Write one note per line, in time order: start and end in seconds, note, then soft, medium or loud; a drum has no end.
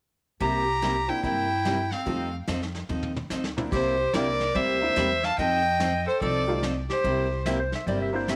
0.40 1.07 C2 medium
0.40 0.62 C3 medium
0.40 0.63 G3 medium
0.40 0.63 A#3 medium
0.40 0.63 E4 medium
0.40 0.63 G4 medium
0.40 1.11 G4 medium
0.40 1.10 A#5 loud
0.40 brush sweep soft
0.40 kick soft
0.82 0.94 C3 medium
0.82 0.94 G3 medium
0.82 0.94 A#3 medium
0.82 0.94 E4 medium
0.82 0.94 G4 medium
0.82 snare medium
0.82 hi-hat pedal medium
1.08 1.22 A#3 medium
1.08 1.22 C4 medium
1.08 1.22 D4 medium
1.08 1.23 E4 medium
1.08 1.23 G5 medium
1.23 1.90 G2 medium
1.23 1.46 C3 soft
1.23 1.46 G3 soft
1.23 1.46 A#3 medium
1.23 1.94 E4 medium
1.23 1.46 E4 soft
1.23 1.46 G4 medium
1.23 1.94 G5 medium
1.23 brush sweep soft
1.23 kick soft
1.65 1.77 C3 medium
1.65 1.77 G3 medium
1.65 1.77 A#3 medium
1.65 1.77 E4 medium
1.65 1.77 G4 medium
1.65 snare medium
1.65 hi-hat pedal soft
1.91 2.34 C4 medium
1.91 2.34 F5 medium
1.91 snare soft
2.06 2.40 F2 medium
2.06 2.28 F3 medium
2.06 2.30 G3 medium
2.06 2.30 A3 soft
2.06 2.29 C4 medium
2.06 2.29 D#4 medium
2.06 2.31 D#4 soft
2.06 2.31 F4 medium
2.06 2.29 A4 medium
2.06 brush sweep soft
2.06 kick soft
2.48 2.83 F2 medium
2.48 2.59 F3 medium
2.48 2.60 C4 medium
2.48 2.60 D#4 medium
2.48 2.60 A4 medium
2.48 snare medium
2.48 hi-hat pedal medium
2.62 snare soft
2.75 snare soft
2.89 3.25 D#2 medium
2.89 3.11 F3 medium
2.89 3.12 C4 soft
2.89 3.11 D#4 medium
2.89 3.12 A4 medium
2.89 mid tom soft
3.03 mid tom soft
3.16 mid tom medium
3.30 3.66 D2 medium
3.30 3.43 F3 medium
3.30 3.43 C4 medium
3.30 3.43 D#4 medium
3.30 3.43 A4 medium
3.30 snare medium
3.30 hi-hat pedal medium
3.44 snare medium
3.57 3.71 A#3 medium
3.57 3.71 C4 medium
3.57 3.71 D4 medium
3.57 3.71 E4 medium
3.57 mid tom medium
3.72 4.05 C2 medium
3.72 3.94 C3 medium
3.72 3.95 G3 medium
3.72 3.95 A#3 medium
3.72 3.95 E4 medium
3.72 4.16 G4 medium
3.72 3.95 G4 medium
3.72 4.15 C5 medium
3.72 brush sweep soft
3.72 kick medium
3.72 crash medium
4.13 4.49 C2 medium
4.13 4.25 C3 medium
4.13 4.26 G3 medium
4.13 4.37 A#3 medium
4.13 4.26 A#3 medium
4.13 4.38 C4 medium
4.13 4.38 D4 medium
4.13 4.26 E4 medium
4.13 4.38 E4 medium
4.13 4.26 G4 medium
4.13 4.57 A#4 medium
4.13 4.57 D5 loud
4.13 snare medium
4.13 hi-hat pedal medium
4.40 snare soft
4.55 4.91 D2 medium
4.55 4.77 C3 medium
4.55 4.77 G3 medium
4.55 4.77 A#3 medium
4.55 4.77 E4 medium
4.55 4.77 G4 medium
4.55 5.26 C5 medium
4.55 5.26 E5 loud
4.55 brush sweep soft
4.55 kick soft
4.81 4.95 A#3 medium
4.81 4.96 C4 medium
4.81 4.96 D4 medium
4.81 4.96 E4 medium
4.96 5.32 E2 medium
4.96 5.08 C3 medium
4.96 5.08 G3 medium
4.96 5.08 A#3 medium
4.96 5.09 E4 medium
4.96 5.09 G4 medium
4.96 snare medium
4.96 hi-hat pedal medium
5.23 5.38 F5 medium
5.23 5.38 A5 medium
5.23 snare soft
5.38 6.04 F2 medium
5.38 5.60 F3 medium
5.38 5.60 C4 medium
5.38 5.60 D#4 medium
5.38 5.61 A4 medium
5.38 6.03 D#5 medium
5.38 6.02 G5 loud
5.38 brush sweep medium
5.38 kick soft
5.80 5.92 F3 medium
5.80 5.92 C4 medium
5.80 5.92 D#4 medium
5.80 5.92 A4 medium
5.80 snare medium
5.80 hi-hat pedal medium
6.07 6.21 A4 medium
6.07 6.21 C5 medium
6.21 6.88 C2 medium
6.21 6.43 F3 medium
6.21 6.43 C4 medium
6.21 6.43 D#4 medium
6.21 6.60 A4 medium
6.21 6.44 A4 medium
6.21 6.60 D5 medium
6.21 brush sweep soft
6.21 kick soft
6.47 6.61 G3 medium
6.47 6.61 A3 medium
6.47 6.61 D#4 medium
6.47 6.62 F4 medium
6.63 6.74 F3 medium
6.63 6.75 C4 medium
6.63 6.75 D#4 medium
6.63 6.75 A4 medium
6.63 snare medium
6.63 hi-hat pedal medium
6.90 7.42 G4 medium
6.90 7.42 C5 medium
6.90 snare soft
7.04 7.71 C2 medium
7.04 7.26 C3 medium
7.04 7.26 G3 medium
7.04 7.26 A#3 medium
7.04 7.26 E4 medium
7.04 7.26 G4 medium
7.04 brush sweep soft
7.04 kick soft
7.46 7.57 C3 medium
7.46 7.57 G3 medium
7.46 7.57 A#3 medium
7.46 7.58 E4 medium
7.46 7.58 G4 medium
7.46 7.59 E5 medium
7.46 snare medium
7.46 hi-hat pedal medium
7.60 7.73 C5 medium
7.72 7.88 E5 medium
7.72 snare soft
7.87 8.36 G1 medium
7.87 8.09 C3 soft
7.87 8.09 G3 medium
7.87 8.09 A#3 medium
7.87 8.09 E4 medium
7.87 8.09 G4 medium
7.87 8.01 D5 medium
7.87 brush sweep soft
7.87 kick soft
8.02 8.15 E5 medium
8.13 8.36 A#3 medium
8.13 8.36 C4 medium
8.13 8.36 D4 medium
8.13 8.36 E4 medium
8.13 8.29 C5 medium
8.28 8.36 C3 medium
8.28 8.36 G3 medium
8.28 8.36 A#3 medium
8.28 8.36 E4 medium
8.28 8.36 G4 medium
8.28 8.36 E5 medium
8.28 snare medium
8.28 hi-hat pedal medium